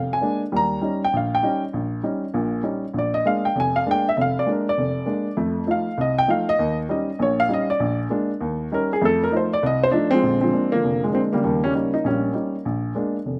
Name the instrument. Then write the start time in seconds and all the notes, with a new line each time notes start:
grand piano
Already playing: F1 F5
0.13 G#5
0.21 G#3 A#3 D4
0.52 D#2 G3
0.56 A#5
0.81 G3 C#4 D#4
1.04 G5
1.13 A#1 F5
1.35 G5
1.43 G3 C#4 D#4
1.73 A#1
2.03 G3 C#4 D#4
2.34 A#1 A#2
2.63 G3 C#4 D#4
2.94 A#1
2.98 D5
3.14 D#5
3.26 G#3 A#3 D4 F5
3.45 G5
3.56 F1
3.60 G#5
3.76 F5
3.86 G#3 A#3 D4
3.91 G5
4.09 E5
4.17 F1 E5
4.21 F5
4.39 D5
4.46 G#3 A#3 D4
4.52 A#4
4.69 D5
4.78 F1
5.06 G#3 A#3 D4
5.37 F2 A3
5.67 F3 A3 D#4
5.71 F5
5.98 C2 D#5
6.18 G5
6.28 F3 A3 D#4 F5
6.49 D#5
6.59 D#2
6.89 G3 C#4 D#4 D#5
7.19 A#1 A#2 C#5
7.40 F5
7.49 G3 C#4 D#4
7.54 D#5
7.70 D5
7.80 A#1
8.10 G#3 A#3 D4
8.41 D#2
8.72 G3 C#4 D#4 A#4
8.93 G#4
9.01 F2 A3 A4
9.24 A#4
9.31 F3 A3 D#4
9.37 C5
9.53 D5
9.63 C2 D#5
9.83 C5
9.92 F3 A3 D4 D#4
10.11 F3 G#3 C4
10.23 A#1 D3
10.41 F3 G#3 C4
10.53 G#3 A#3 D4
10.72 D3 F3 A#3
10.84 F1
11.04 G#3
11.13 G#3 A#3 C4 D4
11.33 C#3 G3 A#3
11.44 D#2 G3
11.64 G3 A#3 C#4
11.74 G3 C#4 D#4
11.94 D#4
12.04 A#1 G3 A#3 C#4
12.34 G3 C#4 D#4
12.65 A#1
12.95 G#3 A#3 D4
13.26 F1